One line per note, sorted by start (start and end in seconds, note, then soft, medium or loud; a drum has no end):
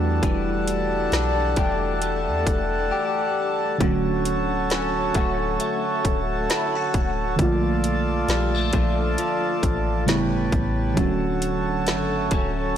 0.00 0.21 E2 loud
0.00 0.15 D3 medium
0.00 0.21 E3 medium
0.00 3.31 E3 medium
0.00 3.32 G3 medium
0.00 3.77 G3 medium
0.00 1.49 A3 medium
0.00 3.32 A3 medium
0.00 3.33 D4 medium
0.00 3.34 F#4 medium
0.00 10.04 A4 medium
0.00 3.77 F#5 medium
0.00 12.77 A5 medium
0.23 1.09 E1 loud
0.23 3.81 E3 medium
0.23 kick loud
0.23 closed hi-hat medium
0.68 closed hi-hat medium
1.12 1.55 B1 loud
1.12 1.57 D4 medium
1.12 snare loud
1.12 closed hi-hat medium
1.56 2.29 E1 loud
1.56 2.01 A3 medium
1.56 4.70 D4 medium
1.56 2.90 G4 medium
1.56 kick loud
1.56 closed hi-hat medium
2.02 5.15 A3 medium
2.02 closed hi-hat medium
2.28 2.46 E2 loud
2.47 2.91 E1 medium
2.47 kick loud
2.47 closed hi-hat medium
2.91 3.91 G4 medium
3.78 5.11 D1 loud
3.78 7.34 D3 medium
3.78 7.39 D3 medium
3.78 7.34 F#3 medium
3.78 7.35 A3 medium
3.78 7.36 C#4 medium
3.78 7.35 F#4 medium
3.78 7.35 C#5 medium
3.78 kick loud
3.78 closed hi-hat medium
3.84 7.37 F#4 medium
4.25 closed hi-hat medium
4.70 5.14 C#4 medium
4.70 snare loud
4.70 closed hi-hat medium
5.14 5.58 D1 loud
5.14 5.59 A3 medium
5.14 7.50 C#4 medium
5.14 6.49 F#4 medium
5.14 kick medium
5.14 closed hi-hat medium
5.60 7.99 A3 medium
5.60 closed hi-hat medium
6.05 6.48 D1 loud
6.05 kick medium
6.05 closed hi-hat medium
6.49 6.75 E4 medium
6.49 snare loud
6.49 closed hi-hat medium
6.75 7.49 F#4 medium
6.94 7.37 D1 loud
6.94 kick medium
6.94 closed hi-hat medium
7.36 8.25 A#1 loud
7.36 10.02 D3 medium
7.36 10.03 F3 medium
7.36 10.04 A3 medium
7.36 10.05 F4 medium
7.36 10.05 D5 medium
7.36 kick loud
7.36 closed hi-hat medium
7.41 10.04 A#3 medium
7.41 10.05 F4 medium
7.84 closed hi-hat medium
8.28 8.71 A#1 loud
8.28 8.55 G3 medium
8.28 snare loud
8.28 closed hi-hat medium
8.55 8.73 A3 medium
8.73 9.16 A#1 loud
8.73 9.17 F3 medium
8.73 11.86 A3 medium
8.73 10.19 D4 medium
8.73 kick loud
8.73 closed hi-hat medium
9.18 10.18 F3 medium
9.18 closed hi-hat medium
9.63 10.09 A1 loud
9.63 kick medium
9.63 closed hi-hat medium
10.06 10.50 G1 loud
10.06 11.08 A2 medium
10.06 10.96 C#3 medium
10.06 10.97 G3 medium
10.06 10.96 A3 medium
10.06 10.98 B3 medium
10.06 10.98 E4 medium
10.06 10.96 G4 medium
10.06 10.96 B4 medium
10.06 12.77 C#5 medium
10.06 snare loud
10.06 closed hi-hat medium
10.52 10.95 A1 loud
10.52 kick medium
10.52 closed hi-hat medium
10.94 12.77 D3 medium
10.94 12.77 F#3 medium
10.94 12.77 A3 medium
10.94 12.77 F#4 medium
10.94 12.77 A4 medium
10.94 kick loud
10.94 closed hi-hat medium
10.98 12.77 C#4 medium
10.98 12.77 F#4 medium
11.42 closed hi-hat medium
11.87 12.29 F#1 loud
11.87 12.32 A3 medium
11.87 snare loud
11.87 closed hi-hat medium
12.31 12.75 D1 loud
12.31 12.76 F#3 medium
12.31 12.77 A3 medium
12.31 12.77 C#4 medium
12.31 kick loud
12.31 closed hi-hat medium